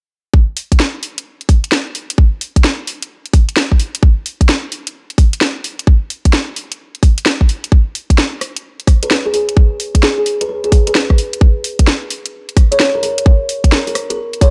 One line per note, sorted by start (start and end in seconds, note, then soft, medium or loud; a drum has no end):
0.34 kick loud
0.57 open hi-hat loud
0.72 kick medium
0.72 closed hi-hat medium
0.80 snare loud
1.03 open hi-hat loud
1.18 closed hi-hat medium
1.41 closed hi-hat soft
1.49 kick loud
1.49 open hi-hat loud
1.64 closed hi-hat medium
1.72 snare loud
1.95 open hi-hat loud
2.10 closed hi-hat medium
2.18 kick loud
2.41 open hi-hat loud
2.56 kick medium
2.56 closed hi-hat medium
2.64 snare loud
2.87 open hi-hat loud
3.02 closed hi-hat medium
3.26 closed hi-hat soft
3.33 kick loud
3.33 open hi-hat loud
3.49 closed hi-hat medium
3.57 snare loud
3.72 kick medium
3.80 open hi-hat loud
3.95 closed hi-hat medium
4.03 kick loud
4.26 open hi-hat loud
4.41 kick medium
4.41 closed hi-hat medium
4.49 snare loud
4.72 open hi-hat medium
4.87 closed hi-hat medium
5.10 closed hi-hat soft
5.18 kick loud
5.18 open hi-hat loud
5.33 closed hi-hat medium
5.41 snare loud
5.64 open hi-hat loud
5.79 closed hi-hat medium
5.87 kick loud
6.10 open hi-hat loud
6.25 kick medium
6.25 closed hi-hat medium
6.33 snare loud
6.56 open hi-hat medium
6.72 closed hi-hat medium
6.95 closed hi-hat soft
7.03 kick loud
7.03 open hi-hat loud
7.18 closed hi-hat medium
7.26 snare loud
7.41 kick medium
7.49 open hi-hat medium
7.64 closed hi-hat medium
7.72 kick loud
7.95 open hi-hat loud
8.10 kick medium
8.10 closed hi-hat medium
8.18 snare loud
8.41 cross-stick medium
8.41 open hi-hat medium
8.56 closed hi-hat medium
8.80 closed hi-hat soft
8.87 kick loud
8.87 cross-stick medium
8.87 open hi-hat medium
9.03 9.08 B4 medium
9.03 closed hi-hat medium
9.11 9.20 B4 medium
9.11 snare loud
9.26 9.31 G#4 medium
9.34 9.43 G#4 medium
9.34 open hi-hat medium
9.49 closed hi-hat medium
9.57 kick loud
9.80 open hi-hat loud
9.95 kick medium
9.95 closed hi-hat medium
10.03 10.12 G#4 medium
10.03 snare loud
10.18 10.23 G#4 medium
10.26 open hi-hat loud
10.41 10.46 B4 medium
10.41 closed hi-hat medium
10.49 10.59 B4 medium
10.64 10.84 G#4 medium
10.64 closed hi-hat soft
10.72 kick medium
10.72 open hi-hat loud
10.87 10.92 B4 medium
10.87 closed hi-hat medium
10.95 11.05 B4 medium
10.95 snare loud
11.10 kick medium
11.10 cross-stick soft
11.18 open hi-hat loud
11.33 closed hi-hat medium
11.41 kick loud
11.64 open hi-hat loud
11.79 kick medium
11.79 closed hi-hat medium
11.87 snare loud
12.11 open hi-hat loud
12.26 closed hi-hat medium
12.49 closed hi-hat soft
12.57 kick loud
12.57 cross-stick medium
12.57 open hi-hat loud
12.72 12.77 C#5 medium
12.72 closed hi-hat medium
12.80 snare loud
12.95 13.00 A#4 medium
13.03 13.12 A#4 medium
13.03 open hi-hat loud
13.18 closed hi-hat medium
13.26 kick loud
13.49 open hi-hat loud
13.64 kick medium
13.64 closed hi-hat medium
13.72 13.82 A#4 medium
13.72 snare loud
13.87 13.92 A#4 medium
13.87 open hi-hat medium
13.95 cross-stick medium
13.95 open hi-hat loud
14.10 14.28 A#4 medium
14.10 closed hi-hat medium
14.33 closed hi-hat soft
14.41 14.50 C#5 medium
14.41 kick loud
14.41 open hi-hat loud